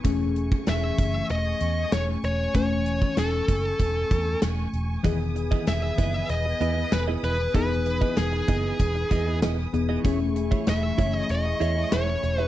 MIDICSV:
0, 0, Header, 1, 8, 480
1, 0, Start_track
1, 0, Tempo, 625000
1, 35, Time_signature, 4, 2, 24, 8
1, 9582, End_track
2, 0, Start_track
2, 0, Title_t, "String section"
2, 0, Program_c, 0, 48
2, 32, Note_on_c, 0, 80, 67
2, 32, Note_on_c, 0, 85, 76
2, 33, Note_on_c, 0, 57, 72
2, 3843, Note_off_c, 0, 57, 0
2, 3843, Note_off_c, 0, 85, 0
2, 3873, Note_on_c, 0, 71, 73
2, 3875, Note_on_c, 0, 87, 82
2, 7683, Note_off_c, 0, 71, 0
2, 7685, Note_off_c, 0, 87, 0
2, 7712, Note_on_c, 0, 64, 66
2, 7713, Note_on_c, 0, 57, 75
2, 7714, Note_on_c, 0, 85, 79
2, 9582, Note_off_c, 0, 57, 0
2, 9582, Note_off_c, 0, 64, 0
2, 9582, Note_off_c, 0, 80, 0
2, 9582, Note_off_c, 0, 85, 0
2, 9582, End_track
3, 0, Start_track
3, 0, Title_t, "Lead electric guitar"
3, 0, Program_c, 1, 29
3, 531, Note_on_c, 1, 76, 86
3, 973, Note_off_c, 1, 76, 0
3, 1007, Note_on_c, 1, 75, 92
3, 1480, Note_off_c, 1, 75, 0
3, 1483, Note_on_c, 1, 73, 80
3, 1547, Note_off_c, 1, 73, 0
3, 1727, Note_on_c, 1, 73, 82
3, 1957, Note_off_c, 1, 73, 0
3, 1966, Note_on_c, 1, 73, 86
3, 2410, Note_off_c, 1, 73, 0
3, 2447, Note_on_c, 1, 69, 66
3, 3371, Note_off_c, 1, 69, 0
3, 4362, Note_on_c, 1, 76, 91
3, 4837, Note_off_c, 1, 76, 0
3, 4840, Note_on_c, 1, 75, 97
3, 5321, Note_on_c, 1, 71, 79
3, 5332, Note_off_c, 1, 75, 0
3, 5385, Note_off_c, 1, 71, 0
3, 5562, Note_on_c, 1, 71, 76
3, 5794, Note_off_c, 1, 71, 0
3, 5804, Note_on_c, 1, 71, 84
3, 6278, Note_off_c, 1, 71, 0
3, 6281, Note_on_c, 1, 68, 67
3, 7208, Note_off_c, 1, 68, 0
3, 8212, Note_on_c, 1, 76, 91
3, 8558, Note_off_c, 1, 76, 0
3, 8558, Note_on_c, 1, 75, 91
3, 8685, Note_off_c, 1, 75, 0
3, 8688, Note_on_c, 1, 75, 89
3, 9160, Note_off_c, 1, 75, 0
3, 9164, Note_on_c, 1, 73, 80
3, 9540, Note_off_c, 1, 73, 0
3, 9540, Note_on_c, 1, 71, 80
3, 9582, Note_off_c, 1, 71, 0
3, 9582, End_track
4, 0, Start_track
4, 0, Title_t, "Clean electric guitar"
4, 0, Program_c, 2, 27
4, 3872, Note_on_c, 2, 59, 79
4, 3876, Note_on_c, 2, 64, 81
4, 3879, Note_on_c, 2, 68, 81
4, 3882, Note_on_c, 2, 75, 87
4, 3984, Note_off_c, 2, 75, 0
4, 3988, Note_off_c, 2, 68, 0
4, 3991, Note_off_c, 2, 64, 0
4, 3999, Note_off_c, 2, 59, 0
4, 4232, Note_on_c, 2, 75, 58
4, 4237, Note_on_c, 2, 68, 54
4, 4240, Note_on_c, 2, 64, 52
4, 4243, Note_on_c, 2, 59, 47
4, 4332, Note_off_c, 2, 75, 0
4, 4334, Note_off_c, 2, 68, 0
4, 4336, Note_off_c, 2, 64, 0
4, 4337, Note_off_c, 2, 59, 0
4, 4592, Note_on_c, 2, 59, 82
4, 4596, Note_on_c, 2, 64, 85
4, 4600, Note_on_c, 2, 68, 90
4, 4603, Note_on_c, 2, 75, 88
4, 4704, Note_off_c, 2, 75, 0
4, 4708, Note_off_c, 2, 68, 0
4, 4712, Note_off_c, 2, 64, 0
4, 4713, Note_on_c, 2, 75, 58
4, 4715, Note_off_c, 2, 59, 0
4, 4718, Note_on_c, 2, 68, 52
4, 4721, Note_on_c, 2, 64, 50
4, 4724, Note_on_c, 2, 59, 49
4, 4813, Note_off_c, 2, 75, 0
4, 4815, Note_off_c, 2, 68, 0
4, 4816, Note_off_c, 2, 64, 0
4, 4818, Note_off_c, 2, 59, 0
4, 5073, Note_on_c, 2, 59, 68
4, 5077, Note_on_c, 2, 64, 82
4, 5080, Note_on_c, 2, 68, 73
4, 5083, Note_on_c, 2, 75, 82
4, 5183, Note_off_c, 2, 75, 0
4, 5187, Note_off_c, 2, 68, 0
4, 5191, Note_off_c, 2, 64, 0
4, 5192, Note_on_c, 2, 75, 55
4, 5194, Note_off_c, 2, 59, 0
4, 5197, Note_on_c, 2, 68, 47
4, 5200, Note_on_c, 2, 64, 50
4, 5203, Note_on_c, 2, 59, 46
4, 5292, Note_off_c, 2, 75, 0
4, 5294, Note_off_c, 2, 68, 0
4, 5296, Note_off_c, 2, 64, 0
4, 5297, Note_off_c, 2, 59, 0
4, 5434, Note_on_c, 2, 75, 76
4, 5438, Note_on_c, 2, 68, 74
4, 5441, Note_on_c, 2, 64, 73
4, 5445, Note_on_c, 2, 59, 69
4, 5544, Note_off_c, 2, 59, 0
4, 5549, Note_off_c, 2, 64, 0
4, 5552, Note_off_c, 2, 68, 0
4, 5553, Note_on_c, 2, 59, 65
4, 5555, Note_off_c, 2, 75, 0
4, 5558, Note_on_c, 2, 64, 64
4, 5561, Note_on_c, 2, 68, 65
4, 5565, Note_on_c, 2, 75, 66
4, 5652, Note_off_c, 2, 59, 0
4, 5655, Note_off_c, 2, 64, 0
4, 5656, Note_off_c, 2, 68, 0
4, 5658, Note_off_c, 2, 75, 0
4, 5792, Note_on_c, 2, 59, 76
4, 5797, Note_on_c, 2, 64, 72
4, 5800, Note_on_c, 2, 68, 69
4, 5803, Note_on_c, 2, 75, 74
4, 5906, Note_off_c, 2, 75, 0
4, 5910, Note_off_c, 2, 68, 0
4, 5913, Note_off_c, 2, 64, 0
4, 5919, Note_off_c, 2, 59, 0
4, 6152, Note_on_c, 2, 75, 64
4, 6157, Note_on_c, 2, 68, 57
4, 6160, Note_on_c, 2, 64, 50
4, 6164, Note_on_c, 2, 59, 49
4, 6252, Note_off_c, 2, 75, 0
4, 6254, Note_off_c, 2, 68, 0
4, 6256, Note_off_c, 2, 64, 0
4, 6258, Note_off_c, 2, 59, 0
4, 6512, Note_on_c, 2, 59, 78
4, 6517, Note_on_c, 2, 64, 80
4, 6520, Note_on_c, 2, 68, 84
4, 6522, Note_on_c, 2, 75, 91
4, 6624, Note_off_c, 2, 75, 0
4, 6628, Note_off_c, 2, 68, 0
4, 6631, Note_off_c, 2, 64, 0
4, 6633, Note_on_c, 2, 75, 65
4, 6634, Note_off_c, 2, 59, 0
4, 6637, Note_on_c, 2, 68, 64
4, 6640, Note_on_c, 2, 64, 50
4, 6643, Note_on_c, 2, 59, 54
4, 6732, Note_off_c, 2, 75, 0
4, 6734, Note_off_c, 2, 68, 0
4, 6736, Note_off_c, 2, 64, 0
4, 6738, Note_off_c, 2, 59, 0
4, 6994, Note_on_c, 2, 59, 73
4, 6999, Note_on_c, 2, 64, 71
4, 7002, Note_on_c, 2, 68, 71
4, 7005, Note_on_c, 2, 75, 75
4, 7106, Note_off_c, 2, 75, 0
4, 7110, Note_off_c, 2, 68, 0
4, 7113, Note_off_c, 2, 64, 0
4, 7115, Note_on_c, 2, 75, 59
4, 7116, Note_off_c, 2, 59, 0
4, 7120, Note_on_c, 2, 68, 48
4, 7123, Note_on_c, 2, 64, 52
4, 7126, Note_on_c, 2, 59, 46
4, 7213, Note_off_c, 2, 75, 0
4, 7216, Note_off_c, 2, 68, 0
4, 7217, Note_off_c, 2, 64, 0
4, 7219, Note_off_c, 2, 59, 0
4, 7234, Note_on_c, 2, 59, 69
4, 7239, Note_on_c, 2, 64, 76
4, 7242, Note_on_c, 2, 68, 74
4, 7245, Note_on_c, 2, 75, 79
4, 7346, Note_off_c, 2, 75, 0
4, 7350, Note_off_c, 2, 68, 0
4, 7354, Note_off_c, 2, 64, 0
4, 7360, Note_off_c, 2, 59, 0
4, 7594, Note_on_c, 2, 75, 62
4, 7598, Note_on_c, 2, 68, 60
4, 7602, Note_on_c, 2, 64, 58
4, 7605, Note_on_c, 2, 59, 54
4, 7693, Note_off_c, 2, 75, 0
4, 7695, Note_off_c, 2, 68, 0
4, 7697, Note_off_c, 2, 64, 0
4, 7698, Note_off_c, 2, 59, 0
4, 7714, Note_on_c, 2, 64, 79
4, 7718, Note_on_c, 2, 68, 80
4, 7722, Note_on_c, 2, 73, 85
4, 7725, Note_on_c, 2, 76, 82
4, 7826, Note_off_c, 2, 76, 0
4, 7831, Note_off_c, 2, 73, 0
4, 7834, Note_off_c, 2, 68, 0
4, 7840, Note_off_c, 2, 64, 0
4, 8072, Note_on_c, 2, 76, 58
4, 8077, Note_on_c, 2, 73, 58
4, 8080, Note_on_c, 2, 68, 54
4, 8083, Note_on_c, 2, 64, 48
4, 8172, Note_off_c, 2, 76, 0
4, 8174, Note_off_c, 2, 73, 0
4, 8176, Note_off_c, 2, 68, 0
4, 8177, Note_off_c, 2, 64, 0
4, 8431, Note_on_c, 2, 64, 80
4, 8436, Note_on_c, 2, 68, 82
4, 8439, Note_on_c, 2, 73, 92
4, 8442, Note_on_c, 2, 76, 91
4, 8543, Note_off_c, 2, 76, 0
4, 8547, Note_off_c, 2, 73, 0
4, 8550, Note_off_c, 2, 68, 0
4, 8552, Note_on_c, 2, 76, 56
4, 8554, Note_off_c, 2, 64, 0
4, 8556, Note_on_c, 2, 73, 56
4, 8559, Note_on_c, 2, 68, 52
4, 8563, Note_on_c, 2, 64, 45
4, 8652, Note_off_c, 2, 76, 0
4, 8654, Note_off_c, 2, 73, 0
4, 8655, Note_off_c, 2, 68, 0
4, 8657, Note_off_c, 2, 64, 0
4, 8911, Note_on_c, 2, 64, 80
4, 8916, Note_on_c, 2, 68, 89
4, 8920, Note_on_c, 2, 73, 85
4, 8922, Note_on_c, 2, 76, 94
4, 9021, Note_off_c, 2, 76, 0
4, 9026, Note_off_c, 2, 73, 0
4, 9030, Note_off_c, 2, 68, 0
4, 9031, Note_on_c, 2, 76, 60
4, 9032, Note_off_c, 2, 64, 0
4, 9036, Note_on_c, 2, 73, 54
4, 9039, Note_on_c, 2, 68, 47
4, 9042, Note_on_c, 2, 64, 46
4, 9131, Note_off_c, 2, 76, 0
4, 9134, Note_off_c, 2, 73, 0
4, 9135, Note_off_c, 2, 68, 0
4, 9137, Note_off_c, 2, 64, 0
4, 9151, Note_on_c, 2, 64, 72
4, 9154, Note_on_c, 2, 68, 67
4, 9158, Note_on_c, 2, 73, 74
4, 9161, Note_on_c, 2, 76, 76
4, 9262, Note_off_c, 2, 76, 0
4, 9266, Note_off_c, 2, 73, 0
4, 9270, Note_off_c, 2, 68, 0
4, 9278, Note_off_c, 2, 64, 0
4, 9510, Note_on_c, 2, 76, 57
4, 9515, Note_on_c, 2, 73, 56
4, 9519, Note_on_c, 2, 68, 53
4, 9522, Note_on_c, 2, 64, 49
4, 9582, Note_off_c, 2, 64, 0
4, 9582, Note_off_c, 2, 68, 0
4, 9582, Note_off_c, 2, 73, 0
4, 9582, Note_off_c, 2, 76, 0
4, 9582, End_track
5, 0, Start_track
5, 0, Title_t, "Synth keys"
5, 0, Program_c, 3, 88
5, 0, Control_c, 3, 64, 127
5, 28, Note_on_c, 3, 52, 75
5, 34, Note_on_c, 3, 57, 67
5, 39, Note_on_c, 3, 61, 66
5, 46, Control_c, 3, 64, 0
5, 47, Note_on_c, 3, 68, 83
5, 187, Control_c, 3, 64, 127
5, 1921, Note_off_c, 3, 52, 0
5, 1924, Note_off_c, 3, 57, 0
5, 1927, Note_off_c, 3, 61, 0
5, 1931, Note_off_c, 3, 68, 0
5, 1948, Note_on_c, 3, 52, 61
5, 1955, Note_on_c, 3, 57, 57
5, 1960, Note_on_c, 3, 61, 56
5, 1966, Note_on_c, 3, 80, 72
5, 3841, Note_off_c, 3, 52, 0
5, 3845, Note_off_c, 3, 57, 0
5, 3847, Note_off_c, 3, 61, 0
5, 3850, Note_off_c, 3, 80, 0
5, 3866, Note_on_c, 3, 52, 75
5, 3873, Note_on_c, 3, 59, 66
5, 3879, Note_on_c, 3, 51, 64
5, 3884, Control_c, 3, 64, 0
5, 3885, Note_on_c, 3, 68, 85
5, 4041, Control_c, 3, 64, 127
5, 5760, Note_off_c, 3, 52, 0
5, 5764, Note_off_c, 3, 59, 0
5, 5767, Note_off_c, 3, 51, 0
5, 5769, Note_off_c, 3, 68, 0
5, 5784, Note_on_c, 3, 52, 60
5, 5790, Note_on_c, 3, 59, 57
5, 5796, Note_on_c, 3, 63, 59
5, 5803, Note_on_c, 3, 68, 66
5, 7439, Note_off_c, 3, 52, 0
5, 7442, Note_off_c, 3, 59, 0
5, 7445, Note_off_c, 3, 63, 0
5, 7448, Note_off_c, 3, 68, 0
5, 7474, Note_on_c, 3, 52, 54
5, 7476, Note_on_c, 3, 59, 51
5, 7479, Note_on_c, 3, 63, 53
5, 7482, Note_on_c, 3, 68, 61
5, 7698, Note_off_c, 3, 52, 0
5, 7708, Note_on_c, 3, 52, 74
5, 7713, Note_on_c, 3, 57, 72
5, 7716, Note_off_c, 3, 59, 0
5, 7716, Note_off_c, 3, 68, 0
5, 7718, Note_off_c, 3, 63, 0
5, 7720, Note_on_c, 3, 61, 65
5, 7724, Control_c, 3, 64, 0
5, 7725, Note_on_c, 3, 68, 86
5, 7838, Control_c, 3, 64, 127
5, 9582, Note_off_c, 3, 52, 0
5, 9582, Note_off_c, 3, 57, 0
5, 9582, Note_off_c, 3, 61, 0
5, 9582, Note_off_c, 3, 68, 0
5, 9582, End_track
6, 0, Start_track
6, 0, Title_t, "Fingered electric bass"
6, 0, Program_c, 4, 33
6, 37, Note_on_c, 4, 28, 99
6, 382, Note_off_c, 4, 28, 0
6, 516, Note_on_c, 4, 28, 99
6, 689, Note_off_c, 4, 28, 0
6, 756, Note_on_c, 4, 30, 82
6, 929, Note_off_c, 4, 30, 0
6, 996, Note_on_c, 4, 28, 82
6, 1169, Note_off_c, 4, 28, 0
6, 1236, Note_on_c, 4, 40, 83
6, 1409, Note_off_c, 4, 40, 0
6, 1476, Note_on_c, 4, 28, 89
6, 1648, Note_off_c, 4, 28, 0
6, 1715, Note_on_c, 4, 28, 89
6, 1888, Note_off_c, 4, 28, 0
6, 1956, Note_on_c, 4, 28, 97
6, 2302, Note_off_c, 4, 28, 0
6, 2435, Note_on_c, 4, 28, 93
6, 2608, Note_off_c, 4, 28, 0
6, 2676, Note_on_c, 4, 30, 81
6, 2849, Note_off_c, 4, 30, 0
6, 2916, Note_on_c, 4, 28, 89
6, 3089, Note_off_c, 4, 28, 0
6, 3157, Note_on_c, 4, 40, 80
6, 3329, Note_off_c, 4, 40, 0
6, 3397, Note_on_c, 4, 28, 93
6, 3569, Note_off_c, 4, 28, 0
6, 3635, Note_on_c, 4, 28, 89
6, 3808, Note_off_c, 4, 28, 0
6, 3875, Note_on_c, 4, 28, 97
6, 4221, Note_off_c, 4, 28, 0
6, 4355, Note_on_c, 4, 28, 93
6, 4528, Note_off_c, 4, 28, 0
6, 4596, Note_on_c, 4, 30, 74
6, 4769, Note_off_c, 4, 30, 0
6, 4833, Note_on_c, 4, 28, 87
6, 5007, Note_off_c, 4, 28, 0
6, 5073, Note_on_c, 4, 40, 83
6, 5247, Note_off_c, 4, 40, 0
6, 5314, Note_on_c, 4, 28, 90
6, 5488, Note_off_c, 4, 28, 0
6, 5554, Note_on_c, 4, 28, 88
6, 5727, Note_off_c, 4, 28, 0
6, 5796, Note_on_c, 4, 28, 91
6, 6141, Note_off_c, 4, 28, 0
6, 6274, Note_on_c, 4, 28, 98
6, 6448, Note_off_c, 4, 28, 0
6, 6516, Note_on_c, 4, 30, 82
6, 6688, Note_off_c, 4, 30, 0
6, 6756, Note_on_c, 4, 28, 91
6, 6928, Note_off_c, 4, 28, 0
6, 6998, Note_on_c, 4, 40, 87
6, 7236, Note_on_c, 4, 28, 90
6, 7247, Note_off_c, 4, 40, 0
6, 7409, Note_off_c, 4, 28, 0
6, 7475, Note_on_c, 4, 28, 85
6, 7648, Note_off_c, 4, 28, 0
6, 7716, Note_on_c, 4, 28, 93
6, 8061, Note_off_c, 4, 28, 0
6, 8196, Note_on_c, 4, 28, 97
6, 8368, Note_off_c, 4, 28, 0
6, 8436, Note_on_c, 4, 30, 82
6, 8609, Note_off_c, 4, 30, 0
6, 8675, Note_on_c, 4, 28, 88
6, 8848, Note_off_c, 4, 28, 0
6, 8914, Note_on_c, 4, 40, 79
6, 9087, Note_off_c, 4, 40, 0
6, 9156, Note_on_c, 4, 28, 86
6, 9328, Note_off_c, 4, 28, 0
6, 9395, Note_on_c, 4, 28, 86
6, 9568, Note_off_c, 4, 28, 0
6, 9582, End_track
7, 0, Start_track
7, 0, Title_t, "Muted clean electric guitar strokes"
7, 3993, Note_on_c, 9, 29, 34
7, 4070, Note_off_c, 9, 29, 0
7, 4111, Note_on_c, 9, 29, 39
7, 4188, Note_off_c, 9, 29, 0
7, 4474, Note_on_c, 9, 29, 40
7, 4551, Note_off_c, 9, 29, 0
7, 4832, Note_on_c, 9, 29, 39
7, 4909, Note_off_c, 9, 29, 0
7, 4955, Note_on_c, 9, 29, 49
7, 5032, Note_off_c, 9, 29, 0
7, 5915, Note_on_c, 9, 29, 48
7, 5992, Note_off_c, 9, 29, 0
7, 6034, Note_on_c, 9, 29, 36
7, 6111, Note_off_c, 9, 29, 0
7, 6273, Note_on_c, 9, 29, 40
7, 6349, Note_off_c, 9, 29, 0
7, 6394, Note_on_c, 9, 29, 43
7, 6471, Note_off_c, 9, 29, 0
7, 6755, Note_on_c, 9, 29, 34
7, 6832, Note_off_c, 9, 29, 0
7, 6876, Note_on_c, 9, 29, 44
7, 6953, Note_off_c, 9, 29, 0
7, 7355, Note_on_c, 9, 29, 39
7, 7432, Note_off_c, 9, 29, 0
7, 7475, Note_on_c, 9, 29, 39
7, 7552, Note_off_c, 9, 29, 0
7, 7836, Note_on_c, 9, 29, 41
7, 7912, Note_off_c, 9, 29, 0
7, 7954, Note_on_c, 9, 29, 39
7, 8031, Note_off_c, 9, 29, 0
7, 8313, Note_on_c, 9, 29, 38
7, 8390, Note_off_c, 9, 29, 0
7, 8794, Note_on_c, 9, 29, 45
7, 8871, Note_off_c, 9, 29, 0
7, 9271, Note_on_c, 9, 29, 39
7, 9348, Note_off_c, 9, 29, 0
7, 9391, Note_on_c, 9, 29, 41
7, 9468, Note_off_c, 9, 29, 0
7, 9582, End_track
8, 0, Start_track
8, 0, Title_t, "Drums"
8, 36, Note_on_c, 9, 36, 96
8, 36, Note_on_c, 9, 42, 82
8, 112, Note_off_c, 9, 36, 0
8, 112, Note_off_c, 9, 42, 0
8, 278, Note_on_c, 9, 42, 68
8, 355, Note_off_c, 9, 42, 0
8, 397, Note_on_c, 9, 36, 84
8, 474, Note_off_c, 9, 36, 0
8, 513, Note_on_c, 9, 42, 80
8, 515, Note_on_c, 9, 38, 98
8, 590, Note_off_c, 9, 42, 0
8, 592, Note_off_c, 9, 38, 0
8, 756, Note_on_c, 9, 36, 77
8, 756, Note_on_c, 9, 42, 67
8, 833, Note_off_c, 9, 36, 0
8, 833, Note_off_c, 9, 42, 0
8, 995, Note_on_c, 9, 42, 79
8, 1071, Note_off_c, 9, 42, 0
8, 1233, Note_on_c, 9, 42, 69
8, 1310, Note_off_c, 9, 42, 0
8, 1477, Note_on_c, 9, 38, 103
8, 1477, Note_on_c, 9, 42, 87
8, 1554, Note_off_c, 9, 38, 0
8, 1554, Note_off_c, 9, 42, 0
8, 1719, Note_on_c, 9, 42, 55
8, 1796, Note_off_c, 9, 42, 0
8, 1956, Note_on_c, 9, 36, 97
8, 1956, Note_on_c, 9, 42, 80
8, 2033, Note_off_c, 9, 36, 0
8, 2033, Note_off_c, 9, 42, 0
8, 2197, Note_on_c, 9, 42, 69
8, 2274, Note_off_c, 9, 42, 0
8, 2317, Note_on_c, 9, 36, 84
8, 2394, Note_off_c, 9, 36, 0
8, 2433, Note_on_c, 9, 42, 83
8, 2436, Note_on_c, 9, 38, 97
8, 2510, Note_off_c, 9, 42, 0
8, 2513, Note_off_c, 9, 38, 0
8, 2675, Note_on_c, 9, 42, 67
8, 2676, Note_on_c, 9, 36, 80
8, 2752, Note_off_c, 9, 42, 0
8, 2753, Note_off_c, 9, 36, 0
8, 2914, Note_on_c, 9, 42, 80
8, 2915, Note_on_c, 9, 36, 81
8, 2991, Note_off_c, 9, 42, 0
8, 2992, Note_off_c, 9, 36, 0
8, 3155, Note_on_c, 9, 42, 70
8, 3157, Note_on_c, 9, 36, 85
8, 3232, Note_off_c, 9, 42, 0
8, 3234, Note_off_c, 9, 36, 0
8, 3394, Note_on_c, 9, 38, 102
8, 3394, Note_on_c, 9, 42, 88
8, 3471, Note_off_c, 9, 38, 0
8, 3471, Note_off_c, 9, 42, 0
8, 3637, Note_on_c, 9, 42, 58
8, 3714, Note_off_c, 9, 42, 0
8, 3874, Note_on_c, 9, 36, 97
8, 3874, Note_on_c, 9, 42, 81
8, 3951, Note_off_c, 9, 36, 0
8, 3951, Note_off_c, 9, 42, 0
8, 4116, Note_on_c, 9, 42, 68
8, 4193, Note_off_c, 9, 42, 0
8, 4237, Note_on_c, 9, 36, 83
8, 4314, Note_off_c, 9, 36, 0
8, 4354, Note_on_c, 9, 42, 79
8, 4357, Note_on_c, 9, 38, 95
8, 4431, Note_off_c, 9, 42, 0
8, 4434, Note_off_c, 9, 38, 0
8, 4596, Note_on_c, 9, 36, 81
8, 4597, Note_on_c, 9, 42, 67
8, 4672, Note_off_c, 9, 36, 0
8, 4673, Note_off_c, 9, 42, 0
8, 4834, Note_on_c, 9, 42, 80
8, 4910, Note_off_c, 9, 42, 0
8, 5075, Note_on_c, 9, 42, 67
8, 5151, Note_off_c, 9, 42, 0
8, 5315, Note_on_c, 9, 38, 103
8, 5315, Note_on_c, 9, 42, 92
8, 5392, Note_off_c, 9, 38, 0
8, 5392, Note_off_c, 9, 42, 0
8, 5558, Note_on_c, 9, 42, 58
8, 5635, Note_off_c, 9, 42, 0
8, 5795, Note_on_c, 9, 36, 95
8, 5796, Note_on_c, 9, 42, 81
8, 5871, Note_off_c, 9, 36, 0
8, 5872, Note_off_c, 9, 42, 0
8, 6036, Note_on_c, 9, 42, 72
8, 6113, Note_off_c, 9, 42, 0
8, 6156, Note_on_c, 9, 36, 81
8, 6233, Note_off_c, 9, 36, 0
8, 6272, Note_on_c, 9, 42, 78
8, 6275, Note_on_c, 9, 38, 97
8, 6349, Note_off_c, 9, 42, 0
8, 6351, Note_off_c, 9, 38, 0
8, 6516, Note_on_c, 9, 36, 79
8, 6516, Note_on_c, 9, 42, 69
8, 6593, Note_off_c, 9, 36, 0
8, 6593, Note_off_c, 9, 42, 0
8, 6753, Note_on_c, 9, 42, 76
8, 6755, Note_on_c, 9, 36, 76
8, 6830, Note_off_c, 9, 42, 0
8, 6832, Note_off_c, 9, 36, 0
8, 6996, Note_on_c, 9, 42, 72
8, 6997, Note_on_c, 9, 36, 78
8, 7072, Note_off_c, 9, 42, 0
8, 7074, Note_off_c, 9, 36, 0
8, 7237, Note_on_c, 9, 38, 105
8, 7237, Note_on_c, 9, 42, 89
8, 7314, Note_off_c, 9, 38, 0
8, 7314, Note_off_c, 9, 42, 0
8, 7479, Note_on_c, 9, 42, 56
8, 7556, Note_off_c, 9, 42, 0
8, 7716, Note_on_c, 9, 36, 98
8, 7717, Note_on_c, 9, 42, 81
8, 7792, Note_off_c, 9, 36, 0
8, 7794, Note_off_c, 9, 42, 0
8, 7957, Note_on_c, 9, 42, 68
8, 8034, Note_off_c, 9, 42, 0
8, 8077, Note_on_c, 9, 36, 88
8, 8154, Note_off_c, 9, 36, 0
8, 8193, Note_on_c, 9, 42, 86
8, 8196, Note_on_c, 9, 38, 102
8, 8270, Note_off_c, 9, 42, 0
8, 8273, Note_off_c, 9, 38, 0
8, 8436, Note_on_c, 9, 36, 77
8, 8436, Note_on_c, 9, 42, 65
8, 8513, Note_off_c, 9, 36, 0
8, 8513, Note_off_c, 9, 42, 0
8, 8673, Note_on_c, 9, 42, 80
8, 8750, Note_off_c, 9, 42, 0
8, 8916, Note_on_c, 9, 42, 70
8, 8993, Note_off_c, 9, 42, 0
8, 9155, Note_on_c, 9, 38, 106
8, 9155, Note_on_c, 9, 42, 88
8, 9232, Note_off_c, 9, 38, 0
8, 9232, Note_off_c, 9, 42, 0
8, 9397, Note_on_c, 9, 42, 58
8, 9474, Note_off_c, 9, 42, 0
8, 9582, End_track
0, 0, End_of_file